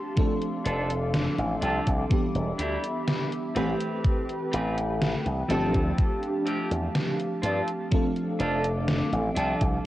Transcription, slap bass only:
0.66 1.26 F1 medium
1.38 1.55 A1 medium
1.62 1.79 C2 loud
1.87 2.04 C2 loud
2.11 muted slap bass stroke soft
2.35 2.52 E1 medium
2.59 2.76 D2 medium
3.56 3.73 A1 medium
4.53 5.14 A1 medium
5.26 5.42 C2 medium
5.50 5.74 G1 loud
5.74 5.91 D2 loud
6.71 6.87 E2 medium
7.43 7.60 G2 medium
8.40 9.00 F1 loud
9.13 9.29 A1 loud
9.37 9.53 C2 loud
9.61 9.78 C2 loud

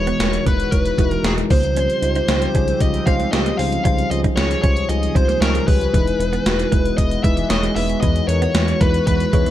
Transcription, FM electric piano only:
0.00 0.42 E3 medium
0.00 0.19 G#3 medium
0.00 0.20 D#4 medium
0.00 0.20 E4 medium
0.00 0.99 F#4 medium
0.00 0.47 B4 loud
0.00 0.72 C#5 loud
0.19 0.36 G#3 medium
0.19 0.37 D#4 medium
0.19 0.37 E4 medium
0.19 0.37 A#4 medium
0.45 0.63 G#3 medium
0.45 0.63 D#4 medium
0.45 0.63 E4 medium
0.45 0.63 B4 medium
0.71 0.89 G#3 medium
0.71 0.89 D#4 medium
0.71 0.89 E4 medium
0.71 0.89 C#5 medium
0.98 1.15 G#3 medium
0.98 1.15 D#4 medium
0.98 1.15 E4 medium
0.98 1.15 F#4 loud
1.24 1.41 G#3 medium
1.24 1.41 D#4 medium
1.24 1.41 E4 medium
1.24 1.41 A#4 loud
1.50 2.25 C#3 medium
1.50 1.92 G3 medium
1.50 1.92 D#4 medium
1.50 1.92 F4 medium
1.50 1.93 C5 medium
2.02 2.19 G3 medium
2.02 2.19 D#4 medium
2.02 2.19 F4 medium
2.02 2.20 C5 medium
2.28 2.45 G3 medium
2.28 2.45 D#4 medium
2.28 2.46 F4 medium
2.28 2.46 C5 medium
2.54 2.71 G3 medium
2.54 2.71 D#4 medium
2.54 2.72 F4 medium
2.54 2.72 G#4 medium
2.80 2.97 G3 medium
2.80 2.97 D#4 medium
2.80 2.98 F4 medium
2.80 2.98 C5 medium
3.06 3.23 G3 medium
3.06 3.24 D#4 medium
3.06 3.24 F4 medium
3.06 3.24 C5 loud
3.32 3.49 G3 medium
3.32 3.50 D#4 medium
3.32 3.50 F4 medium
3.32 3.50 G4 loud
3.58 4.33 C#3 medium
3.58 3.76 G3 medium
3.58 3.76 D#4 medium
3.58 3.76 F4 medium
3.58 3.76 C5 medium
3.85 4.02 G3 medium
3.85 4.02 D#4 medium
3.85 4.02 F4 medium
3.85 4.02 C5 loud
4.10 4.28 G3 medium
4.10 4.28 D#4 medium
4.10 4.28 F4 medium
4.10 4.28 C5 medium
4.37 4.54 G3 medium
4.37 4.54 D#4 medium
4.37 4.54 F4 medium
4.37 4.54 G#4 medium
4.62 4.80 G3 medium
4.62 4.80 D#4 medium
4.62 4.80 F4 medium
4.62 4.80 C5 medium
4.89 5.06 G3 medium
4.89 5.06 D#4 medium
4.89 5.06 F4 medium
4.89 5.07 G#4 medium
5.15 5.32 G3 medium
5.15 5.32 D#4 medium
5.15 5.33 F4 medium
5.15 5.33 C5 loud
5.41 5.58 G3 medium
5.41 5.58 D#4 medium
5.41 5.59 F4 medium
5.41 5.59 C#5 loud
5.67 5.84 G3 medium
5.67 5.84 D#4 medium
5.67 5.85 F4 medium
5.67 5.85 G4 medium
5.93 6.68 E3 medium
5.93 6.10 G#3 medium
5.93 6.10 D#4 medium
5.93 6.11 E4 medium
5.93 6.11 B4 loud
6.19 6.36 G#3 medium
6.19 6.37 D#4 medium
6.19 6.37 E4 medium
6.19 6.37 B4 medium
6.46 6.63 G#3 medium
6.46 6.63 D#4 medium
6.46 6.63 E4 medium
6.46 6.63 F#4 medium
6.71 6.89 G#3 medium
6.71 6.89 D#4 medium
6.71 6.89 E4 medium
6.71 6.89 B4 medium
6.98 7.15 G#3 medium
6.98 7.15 D#4 medium
6.98 7.15 E4 medium
6.98 7.15 B4 medium
7.24 7.41 G#3 medium
7.24 7.41 D#4 medium
7.24 7.41 E4 medium
7.24 7.41 B4 loud
7.50 7.67 G#3 medium
7.50 7.67 D#4 medium
7.50 7.67 E4 medium
7.50 7.68 C#5 loud
7.76 7.93 G#3 medium
7.76 7.93 D#4 medium
7.76 7.94 E4 medium
7.76 7.94 B4 medium
8.02 8.77 E3 medium
8.02 8.19 G#3 medium
8.02 8.20 D#4 medium
8.02 8.20 E4 medium
8.02 8.20 B4 loud
8.29 8.45 G#3 medium
8.29 8.46 D#4 medium
8.29 8.46 E4 medium
8.29 8.46 A#4 medium
8.55 8.72 G#3 medium
8.55 8.72 D#4 medium
8.55 8.72 E4 medium
8.55 8.72 B4 medium
8.80 8.97 G#3 medium
8.80 8.98 D#4 medium
8.80 8.98 E4 medium
8.80 8.98 B4 medium
9.07 9.24 G#3 medium
9.07 9.24 D#4 medium
9.07 9.24 E4 medium
9.07 9.24 B4 medium
9.32 9.50 G#3 medium
9.32 9.50 D#4 medium
9.32 9.50 E4 medium
9.32 9.50 C#5 loud

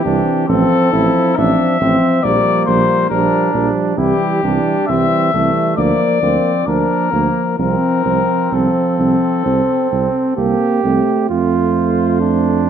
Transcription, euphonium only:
0.05 0.48 E3 soft
0.48 0.92 F3 medium
0.94 1.36 F3 soft
1.37 1.80 F3 soft
1.81 2.23 F3 soft
2.23 2.66 F3 soft
2.67 3.09 F3 soft
3.10 3.53 F3 soft
3.54 3.97 F3 soft
3.98 4.42 E3 soft
4.44 4.77 E3 soft
4.91 5.34 E3 soft
5.34 5.77 E3 soft
5.78 6.21 F3 soft
6.22 6.66 F3 soft
6.67 7.11 F3 soft
7.12 7.58 F3 soft
7.58 8.05 F3 soft
8.05 8.52 F3 soft
8.52 9.42 F3 soft
9.45 10.36 C4 medium
10.37 10.83 A#3 medium
10.84 11.29 A3 soft
11.30 12.70 A3 soft

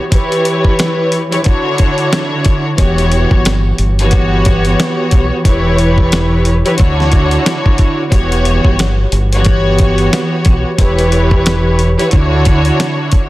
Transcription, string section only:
0.12 1.21 E3 loud
0.12 1.21 E4 medium
0.12 1.21 G4 loud
0.12 1.21 B4 loud
0.12 1.21 C#5 loud
1.31 1.45 E3 medium
1.31 1.42 E4 medium
1.31 1.45 G4 medium
1.31 1.45 B4 medium
1.31 1.43 C#5 loud
1.43 2.69 D3 loud
1.43 2.69 D4 loud
1.43 2.70 E4 loud
1.43 2.70 F#4 loud
1.43 2.70 C#5 loud
2.76 3.86 E3 loud
2.76 3.87 B3 medium
2.76 3.87 F#4 medium
2.76 3.87 G4 medium
2.76 3.87 C#5 loud
4.01 5.37 E3 loud
4.01 5.37 B3 loud
4.01 5.37 F#4 loud
4.01 5.37 G4 loud
4.01 5.38 C#5 loud
5.45 6.54 E3 loud
5.45 6.54 E4 medium
5.45 6.54 G4 loud
5.45 6.54 B4 loud
5.45 6.55 C#5 loud
6.65 6.78 E3 medium
6.65 6.76 E4 medium
6.65 6.78 G4 medium
6.65 6.78 B4 medium
6.65 6.76 C#5 loud
6.76 8.03 D3 loud
6.76 8.03 D4 medium
6.76 8.03 E4 loud
6.76 8.03 F#4 loud
6.76 8.03 C#5 loud
8.10 9.20 E3 loud
8.10 9.20 B3 medium
8.10 9.20 F#4 medium
8.10 9.20 G4 medium
8.10 9.20 C#5 loud
9.34 10.70 E3 loud
9.34 10.70 B3 loud
9.34 10.71 F#4 loud
9.34 10.71 G4 medium
9.34 10.71 C#5 loud
10.78 11.87 E3 loud
10.78 11.88 E4 medium
10.78 11.88 G4 medium
10.78 11.88 B4 loud
10.78 11.88 C#5 loud
11.98 12.11 E3 medium
11.98 12.09 E4 medium
11.98 12.11 G4 medium
11.98 12.12 B4 medium
11.98 12.10 C#5 loud
12.10 13.29 D3 loud
12.10 13.29 D4 loud
12.10 13.29 E4 loud
12.10 13.29 F#4 loud
12.10 13.29 C#5 loud

